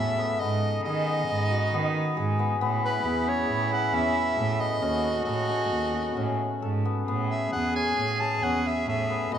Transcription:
Already playing: A2 B3 C#4 E4 F#4 A4 E5
0.18 B3
0.40 G#2 B3 D#4 D#5
0.84 D#3 G#4 D#5
1.07 B3
1.28 G#2
1.51 F#4
1.72 D#3 B3
2.16 G#2 G#4
2.39 B3
2.59 A2 B3 E4
2.85 B4
3.04 E2 G#4
3.27 C#4 C#5
3.49 A2
3.71 G#4 F#5
3.93 E2 C#4 E5
4.37 A2 A4
4.60 B3 D#5
4.81 D#2 C#4 F#4
5.25 A2 A4 D#5
5.49 C#4
5.70 D#2
5.93 F#4
6.16 A2 C#4
6.62 G#2 A4
6.85 B3
7.07 A2 B3 G#4
7.29 E5
7.52 E2 G#4 F#5
7.75 C#4 G#5
7.97 A2
8.20 G#4 A5
8.42 E2 C#4 F#5
8.67 E5
8.87 A2 A4 E5
9.10 B3
9.31 A2 B3 F#4 D#5

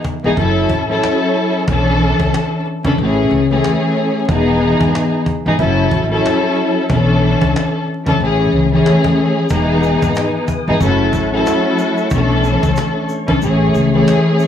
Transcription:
0.05 cajon bass
0.24 G#1 E3 B3 D#4 G#4
0.36 F#1 F#3 C#4 E4 A4, cajon bass
0.57 cajon slap
0.69 cajon bass
0.88 F#3 C#4 E4 A4, cajon slap
1.03 cajon slap
1.35 cajon slap
1.68 B1 E3 C#4 D4 A4, cajon bass
2.01 cajon slap
2.20 C#2, cajon bass
2.34 cajon slap
2.66 cajon slap
2.84 C#2 E3 C#4 D4 A4, cajon bass
2.98 A1 E3 A3 C#4 G#4, cajon slap
3.31 C#2, cajon slap
3.50 E3 A3 C#4 G#4, cajon slap
3.64 cajon slap
3.96 cajon slap
4.28 E1 E3 B3 D#4 G#4, cajon bass
4.61 cajon slap
4.81 G#1, cajon bass
4.95 cajon slap
5.26 cajon bass
5.46 G#1 E3 B3 D#4 G#4
5.58 F#1 F#3 C#4 E4 A4, cajon bass
5.79 cajon slap
5.91 A1, cajon bass
6.10 F#3 C#4 E4 A4, cajon slap
6.26 cajon slap
6.57 cajon slap
6.90 B1 E3 C#4 D4 A4, cajon bass
7.22 cajon slap
7.42 C#2, cajon bass
7.56 cajon slap
7.88 cajon slap
8.05 C#2 E3 C#4 D4 A4, cajon bass
8.20 A1 E3 A3 C#4 G#4, cajon slap
8.40 cajon slap
8.52 C#2, cajon slap
8.71 E3 A3 C#4 G#4
8.86 cajon slap
9.04 cajon bass
9.18 cajon slap
9.49 E1 E3 B3 D#4 G#4 B4 G#5 D#6, cajon bass, shaker
9.83 shaker
10.02 G#1, cajon bass, shaker
10.15 cajon slap, shaker
10.48 cajon bass, shaker
10.67 G#1 E3 B3 D#4 G#4
10.79 F#1 F#3 A3 C#4 E4 A4 F#5 C#6, cajon bass, shaker
11.00 cajon slap
11.13 A1, cajon bass, shaker
11.31 F#3 C#4 E4 A4, cajon slap
11.46 cajon slap, shaker
11.78 cajon slap, shaker
11.97 shaker
12.10 B1 E3 C#4 D4 A4 C#5, cajon bass, shaker
12.44 cajon slap, shaker
12.63 C#2, cajon bass, shaker
12.76 cajon slap, shaker
13.09 cajon slap, shaker
13.27 C#2 E3 C#4 D4 A4, cajon bass
13.42 A1 E3 A3 C#4 G#4 G#5, shaker
13.74 C#2, cajon slap, shaker
13.93 E3 A3 C#4 G#4, cajon slap
14.07 cajon slap, shaker
14.39 cajon slap, shaker

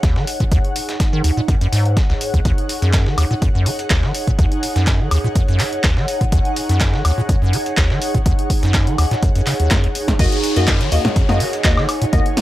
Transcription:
Already playing: D#4 G#4 C#5 F#5
0.03 D#2, kick, snare, closed hi-hat
0.16 D#3, snare
0.27 closed hi-hat, open hi-hat
0.40 A#2, kick, closed hi-hat
0.52 D#2, kick, closed hi-hat
0.65 closed hi-hat
0.76 closed hi-hat, open hi-hat
0.89 snare, closed hi-hat
1.00 kick, snare, closed hi-hat
1.13 D#3
1.24 D#2, closed hi-hat, open hi-hat
1.37 A#2
1.48 F#2, kick, closed hi-hat
1.61 F#2, closed hi-hat
1.72 G#2, snare, closed hi-hat, open hi-hat
1.86 closed hi-hat
1.97 D#2, kick, snare, closed hi-hat
2.10 C#2, snare
2.21 closed hi-hat, open hi-hat
2.34 D#2, kick, closed hi-hat
2.45 D#2, kick, closed hi-hat
2.58 closed hi-hat
2.69 closed hi-hat, open hi-hat
2.82 F#2, snare, closed hi-hat
2.93 kick, snare, clap, closed hi-hat
3.06 D#3, snare
3.18 D#2, closed hi-hat, open hi-hat, high woodblock
3.31 A#2
3.42 F#2, kick, closed hi-hat
3.55 F#2
3.66 D#3, closed hi-hat, open hi-hat
3.79 closed hi-hat
3.90 D#2, kick, snare, clap, closed hi-hat
4.03 D#3, snare
4.14 closed hi-hat, open hi-hat
4.27 A#2, kick, closed hi-hat
4.39 D#2, kick, closed hi-hat
4.52 closed hi-hat
4.63 closed hi-hat, open hi-hat
4.76 F#2, snare, closed hi-hat
4.87 kick, snare, clap, closed hi-hat
5.00 D#3
5.11 D#2, closed hi-hat, open hi-hat, high woodblock
5.24 A#2
5.35 F#2, kick, closed hi-hat
5.48 F#2, closed hi-hat
5.59 D#3, snare, clap, closed hi-hat, open hi-hat
5.73 closed hi-hat
5.84 D#2, kick, snare, clap, closed hi-hat
5.97 D#3, snare
6.08 closed hi-hat, open hi-hat
6.21 A#2, kick, closed hi-hat
6.32 D#2, kick, closed hi-hat
6.45 closed hi-hat
6.56 closed hi-hat, open hi-hat
6.69 F#2, snare, closed hi-hat
6.80 kick, snare, clap, closed hi-hat
6.94 D#3, snare
7.05 D#2, closed hi-hat, open hi-hat, high woodblock
7.18 A#2
7.29 F#2, kick, closed hi-hat
7.42 F#2
7.53 D#3, closed hi-hat, open hi-hat
7.66 closed hi-hat
7.77 D#2, kick, snare, clap, closed hi-hat
7.90 D#3, snare
8.02 closed hi-hat, open hi-hat
8.15 A#2, kick, closed hi-hat
8.26 D#2, kick, closed hi-hat
8.39 closed hi-hat
8.50 kick, closed hi-hat, open hi-hat
8.63 F#2, snare, closed hi-hat
8.74 kick, snare, clap, closed hi-hat
8.87 D#3, closed hi-hat
8.98 D#2, closed hi-hat, open hi-hat, high woodblock
9.11 A#2, snare, closed hi-hat
9.23 F#2, kick, closed hi-hat
9.35 F#2, closed hi-hat
9.46 C#3, snare, clap, closed hi-hat, open hi-hat
9.60 D#2, closed hi-hat
9.71 F#2, kick, snare, clap, closed hi-hat
9.84 D#2, closed hi-hat
9.95 closed hi-hat, open hi-hat
10.08 D#2, kick, snare, closed hi-hat
10.19 D#2 A#3 F#4 D#5, kick, closed hi-hat, crash, downlifter
10.32 closed hi-hat
10.44 closed hi-hat, open hi-hat
10.56 F#2 A#3 F#4 D#5, snare, closed hi-hat
10.67 kick, snare, clap, closed hi-hat
10.81 D#3, snare, closed hi-hat
10.92 D#2 A#3 F#4 D#5, closed hi-hat, open hi-hat
11.05 A#2, snare, closed hi-hat
11.16 F#2, kick, closed hi-hat
11.29 F#2 A#3 F#4 D#5, snare
11.40 D#3, closed hi-hat, open hi-hat
11.53 closed hi-hat
11.64 D#2 A#3 F#4 D#5, kick, snare, clap, closed hi-hat
11.77 D#3, snare, high woodblock
11.89 closed hi-hat, open hi-hat, high woodblock
12.02 A#2, closed hi-hat
12.13 D#2 A#3 F#4 D#5, kick, closed hi-hat
12.26 closed hi-hat
12.37 snare, closed hi-hat, open hi-hat

